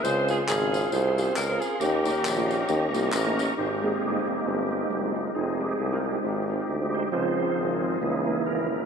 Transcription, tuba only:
X:1
M:4/4
L:1/8
Q:"Swing" 1/4=135
K:Ab
V:1 name="Tuba" clef=bass
D,,2 A,,,2 C,,2 D,, z | E,,2 B,,,2 E,, C,, =A,,,2 | A,,,2 G,,, F,,, G,,,2 _G,,,2 | F,,,2 C,,2 A,,,2 =D,,2 |
D,,2 A,,,2 D,,2 A,,,2 |]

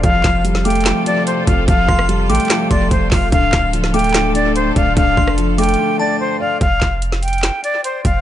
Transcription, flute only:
X:1
M:4/4
L:1/8
Q:1/4=146
K:F
V:1 name="Flute"
f2 z g2 d c f | f2 z g2 d c f | f2 z g2 d c f | f2 z g2 d c f |
f2 z g2 d c f |]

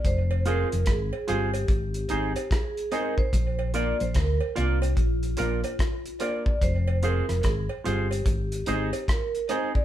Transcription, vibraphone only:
X:1
M:4/4
L:1/16
Q:"Swing 16ths" 1/4=73
K:Bbmix
V:1 name="Vibraphone"
c2 B2 A2 G6 A2 B c- | c2 d c B2 F8 d2 | c2 B2 A2 G6 B2 c d |]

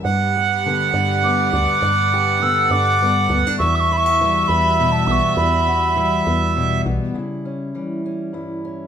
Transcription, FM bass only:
X:1
M:6/8
L:1/16
Q:3/8=68
K:Edor
V:1 name="FM bass" clef=bass
G,,6 G,,4 D,, z | G,,6 G,,4 D,, z | E,,6 E,,4 B,,, z | E,,6 E,,4 B,,, z |
z12 |]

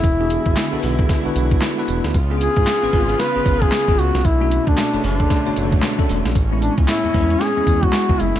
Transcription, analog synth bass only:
X:1
M:4/4
L:1/16
Q:"Swing 16ths" 1/4=114
K:A
V:1 name="Analog synth bass" clef=bass
E,,,3 G,,, z B,,, B,,,2 z B,,, B,,,2 z2 E,,, D,, | C,,3 G,, z G,,, G,,,2 z G,,, G,,,2 z G,,, C,, =C,, | B,,,3 D,, z F,,, F,,,2 z F,,, F,,,2 z2 E,,, _B,,, | A,,,3 C,, z E,, E,,2 z E,, E,,2 z C,, F,,, =F,,, |]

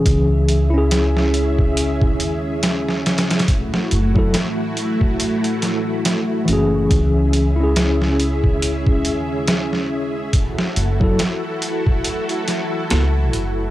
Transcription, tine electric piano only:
X:1
M:4/4
L:1/16
Q:"Swing 16ths" 1/4=70
K:C#m
V:1 name="Tine electric piano"
[E,CG]3 [CEG]12- [CEG] | z3 [F,EA] z8 z2 [E,CG]2- | [E,CG]3 [CEG]12- [CEG] | z3 [F,EA] z12 |]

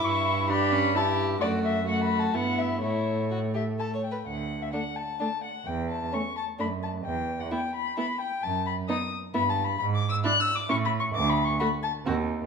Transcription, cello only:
X:1
M:3/4
L:1/8
Q:1/4=130
K:D
V:1 name="Cello" clef=bass
G,,6 | F,,4 G,,2 | A,,4- A,, z | D,,2 z4 |
E,,2 z2 F,,2 | E,,2 z4 | F,,2 z2 G,,2 | [K:A] G,,2 z2 A,,2 |
D,,2 z2 ^D,,2 |]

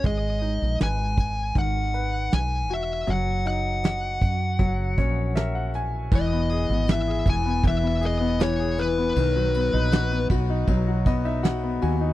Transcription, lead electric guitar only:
X:1
M:4/4
L:1/8
Q:1/4=79
K:Elyd
V:1 name="Lead electric guitar"
d2 g2 f2 g e | f f6 z | d2 e g e d c B- | B3 z4 z |]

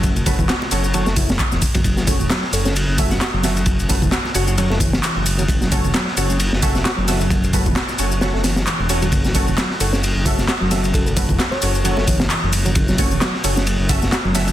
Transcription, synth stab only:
X:1
M:4/4
L:1/8
Q:"Swing 16ths" 1/4=132
K:F#m
V:1 name="Synth stab"
z [CFAB] z [CFAc] [CFAc] z3 | z [CFAc] z [CFAc] z [CFAe] z [CFAe] | z [CFAB] z [CFAc] [CFAc] z3 | z [CFAc] z [CFAc] z [CFAe] z [CFAe] |
z [CFAB] z [CFAc] [CFAc] z2 [CFAc] | z [CFAc] z [CFAc] z [CFAe] z [CFAe] | z [CFAB] z [CFAc] [CFAc] z3 | z [CFAc] z [CFAc] z [CFAe] z [CFAe] |]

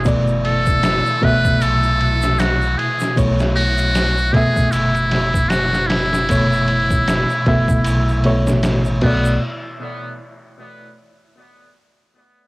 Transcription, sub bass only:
X:1
M:4/4
L:1/16
Q:"Swing 16ths" 1/4=77
K:Amix
V:1 name="Sub bass" clef=bass
F,,,4- F,,, z F,,,2 B,,,6 z2 | B,,,6 z2 F,,,8- | F,,,4- F,,, z F,,,2 B,,,3 A,,,3 B,,,2 | z16 |]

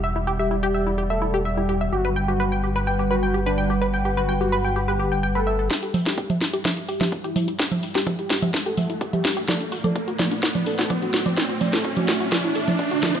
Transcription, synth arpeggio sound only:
X:1
M:4/4
L:1/16
Q:1/4=127
K:Em
V:1 name="Synth arpeggio sound"
e E G e E G e E G e E G e E G e | G B g G B g G B g G B g G B g G | B g G B g G B g G B G g g B e A | E G e E G e E G e E G e E G e E |
G e E G e E G e E G e E G e E G | d D F d D F d D F d D F d D F d | D F d D F d D F d D A D D F A C |]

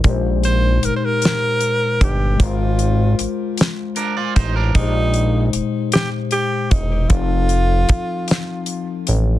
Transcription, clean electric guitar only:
X:1
M:6/8
L:1/16
Q:3/8=51
K:Bbmix
V:1 name="Clean electric guitar"
z12 | z8 [DB] [Fd] [Ec] [DB]- | [DB] z8 z3 | z12 |]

